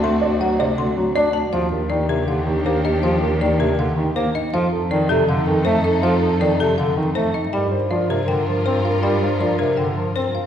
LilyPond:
<<
  \new Staff \with { instrumentName = "Marimba" } { \time 4/4 \key g \minor \tempo 4 = 160 c'''8 r8 fis''8 c''8 c'''8 r8 d''8 a''8 | f''8 r8 d''8 bes'8 f''8 r8 c''8 ees''8 | f''8 r8 d''8 bes'8 f''8 r8 c''8 ees''8 | f''8 r8 d''8 a'8 f''8 r8 c''8 ees''8 |
f''8 r8 d''8 a'8 f''8 r8 c''8 ees''8 | g''8 r8 d''8 bes'8 g''8 r8 c''8 f''8 | g''8 r8 d''8 bes'8 g''8 r8 c''8 f''8 | }
  \new Staff \with { instrumentName = "French horn" } { \time 4/4 \key g \minor fis'8 fis'8 fis'8 fis'8 fis'8 fis'8 fis'8 r8 | g'8 g'8 g'8 g'8 g'8 g'8 g'8 g'8 | g'8 g'8 g'8 g'8 g'8 g'8 g'8 r8 | a'8 a'8 a'8 a'8 a'8 a'8 a'8 a'8 |
a'8 a'8 a'8 a'8 a'8 a'8 a'8 r8 | bes'8 bes'8 bes'8 bes'8 bes'8 bes'8 bes'8 bes'8 | bes'8 bes'8 bes'8 bes'8 bes'8 bes'8 bes'8 r8 | }
  \new Staff \with { instrumentName = "Grand piano" } { \time 4/4 \key g \minor a'8 d''8 fis'8 d''8 r8 fis'8 d''8 fis'8 | f'8 bes'8 ees'8 bes'8 r8 ees'8 bes'8 ees'8 | f'8 bes'8 ees'8 bes'8 r8 ees'8 bes'8 ees'8 | f'8 a'8 ees'8 a'8 r8 ees'8 a'8 ees'8 |
f'8 a'8 ees'8 a'8 r8 ees'8 a'8 ees'8 | g'8 c''8 f'8 c''8 r4 c''8 f'8 | g'8 c''8 f'8 c''8 r4 c''8 f'8 | }
  \new Staff \with { instrumentName = "Violin section" } { \time 4/4 \key g \minor <c' fis'>2.~ <c' fis'>8 r8 | <d' g'>1~ | <d' g'>2.~ <d' g'>8 r8 | <ees' a'>1~ |
<ees' a'>2.~ <ees' a'>8 r8 | <f' bes'>1~ | <f' bes'>2.~ <f' bes'>8 r8 | }
  \new Staff \with { instrumentName = "Bass clarinet" } { \clef bass \time 4/4 \key g \minor a8 r8 fis8 c8 d8 fis8 d'8 r8 | f8 r8 ees8 c8 d8 ees8 bes8 r8 | f8 r8 ees8 c8 d8 ees8 bes8 r8 | f8 r8 ees8 c8 d8 ees8 a8 r8 |
f8 r8 ees8 c8 d8 ees8 a8 r8 | g8 r8 f8 c8 d8 f8 c'8 r8 | g8 r8 f8 c8 d8 f8 c'8 r8 | }
  \new Staff \with { instrumentName = "Cello" } { \clef bass \time 4/4 \key g \minor d,1 | ees,1~ | ees,1 | f,1~ |
f,1 | g,1~ | g,1 | }
>>